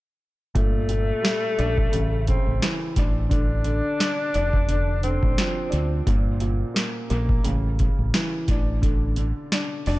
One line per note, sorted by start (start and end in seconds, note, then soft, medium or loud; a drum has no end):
0.55 1.11 G1 loud
0.55 0.88 A#2 medium
0.55 2.24 A3 loud
0.55 kick loud
0.55 closed hi-hat medium
0.89 1.93 A#2 medium
0.89 closed hi-hat medium
1.22 1.92 G3 medium
1.22 snare loud
1.22 closed hi-hat loud
1.58 1.87 A#1 loud
1.58 1.93 D4 medium
1.58 closed hi-hat medium
1.78 kick loud
1.92 2.36 A1 loud
1.92 2.27 C#3 medium
1.92 closed hi-hat medium
2.27 2.97 C#3 medium
2.27 2.78 C4 medium
2.27 kick loud
2.27 closed hi-hat medium
2.47 2.59 A1 medium
2.62 2.97 E3 medium
2.62 snare loud
2.62 closed hi-hat medium
2.96 3.80 A1 loud
2.96 3.99 D4 medium
2.96 kick loud
2.96 closed hi-hat medium
3.29 3.63 D3 medium
3.29 4.99 D4 loud
3.29 kick loud
3.29 closed hi-hat medium
3.64 4.67 D3 medium
3.64 closed hi-hat medium
4.00 4.34 D4 medium
4.00 snare loud
4.00 closed hi-hat loud
4.34 5.19 F1 medium
4.34 5.68 D4 loud
4.34 closed hi-hat medium
4.53 kick loud
4.68 5.03 D3 medium
4.68 closed hi-hat medium
5.03 6.07 D3 medium
5.03 6.03 C4 medium
5.03 closed hi-hat medium
5.23 5.35 A1 medium
5.23 kick loud
5.38 6.08 F3 medium
5.38 snare loud
5.38 closed hi-hat medium
5.70 6.01 D2 loud
5.70 6.06 D4 medium
5.70 closed hi-hat medium
6.07 6.62 G1 loud
6.07 6.40 A#2 medium
6.07 kick loud
6.07 closed hi-hat medium
6.40 7.45 A#2 medium
6.40 closed hi-hat medium
6.74 7.09 A#3 medium
6.74 snare loud
6.74 closed hi-hat loud
7.10 7.38 A#1 loud
7.10 7.45 A#3 loud
7.10 closed hi-hat medium
7.29 kick loud
7.44 7.88 A1 loud
7.44 7.79 C#3 medium
7.44 closed hi-hat medium
7.79 8.49 C#3 medium
7.79 kick loud
7.79 closed hi-hat medium
7.99 8.11 A1 medium
8.14 8.49 E3 loud
8.14 snare loud
8.14 closed hi-hat medium
8.48 9.32 A1 loud
8.48 9.51 D4 medium
8.48 kick loud
8.48 closed hi-hat medium
8.82 9.15 D3 medium
8.82 kick loud
8.82 closed hi-hat medium
9.16 9.99 D3 medium
9.16 closed hi-hat medium
9.52 9.86 D4 medium
9.52 snare loud
9.52 closed hi-hat loud
9.86 9.99 F1 medium
9.86 9.99 D4 loud
9.86 open hi-hat medium